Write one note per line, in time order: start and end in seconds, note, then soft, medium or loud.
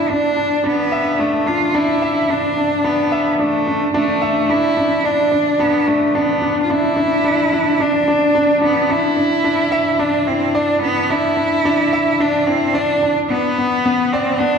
0.00 0.12 B3 medium
0.00 0.10 D4 medium
0.00 0.11 E4 medium
0.00 0.11 D5 medium
0.09 0.67 D4 loud
0.09 0.35 D4 medium
0.37 0.53 D4 medium
0.64 1.21 B3 loud
0.64 0.90 D4 medium
0.92 1.18 E5 medium
1.19 1.48 A3 medium
1.19 1.45 D4 medium
1.46 1.63 D4 medium
1.46 1.76 F4 medium
1.74 2.01 D4 medium
1.74 2.31 E4 medium
2.02 2.28 E5 medium
2.30 2.56 D4 medium
2.30 2.86 D4 medium
2.57 2.73 D4 medium
2.84 3.40 B3 medium
2.84 3.11 D4 medium
3.12 3.38 E5 medium
3.39 3.91 A3 medium
3.39 3.66 D4 medium
3.67 3.83 D4 medium
3.94 4.51 A3 medium
3.94 4.21 D4 loud
4.22 4.48 E5 medium
4.50 4.75 D4 medium
4.50 5.07 E4 loud
4.77 4.93 D4 medium
5.04 5.30 D4 medium
5.04 5.62 D4 loud
5.32 5.48 D4 medium
5.59 5.89 B3 medium
5.59 5.86 D4 medium
5.87 6.17 A3 medium
5.87 6.03 D4 medium
6.15 6.62 B3 medium
6.15 6.40 D4 medium
6.42 6.58 D4 medium
6.62 6.72 F4 medium
6.70 6.95 D4 medium
6.70 7.84 E4 loud
6.97 7.23 D4 medium
7.25 7.50 D4 medium
7.53 7.78 D4 medium
7.80 8.06 D4 medium
7.80 8.63 D4 medium
8.08 8.33 D4 medium
8.35 8.60 D4 medium
8.62 8.92 B3 medium
8.62 8.88 D4 medium
8.90 9.15 D4 medium
8.90 10.01 E4 loud
9.17 9.33 D4 medium
9.44 9.71 D4 medium
9.72 9.99 E5 loud
9.99 10.26 D4 medium
9.99 10.29 D4 loud
10.27 10.56 C4 medium
10.27 10.54 E4 medium
10.55 10.81 D4 loud
10.55 10.81 D5 loud
10.82 11.12 B3 loud
10.82 11.09 D4 medium
11.10 11.36 D4 medium
11.10 12.22 E4 loud
11.37 11.53 D4 medium
11.65 11.92 D4 loud
11.93 12.19 E5 medium
12.20 12.47 D4 loud
12.20 12.48 D4 loud
12.46 12.75 C4 loud
12.46 12.74 E4 medium
12.74 13.16 D4 loud
12.74 13.01 D5 loud
13.03 13.29 D4 medium
13.29 14.13 B3 loud
13.29 13.57 B3 medium
13.58 13.74 B3 medium
13.86 14.12 B3 loud
14.12 14.41 C4 medium
14.12 14.40 D5 loud
14.39 14.58 B3 medium
14.39 14.58 D4 loud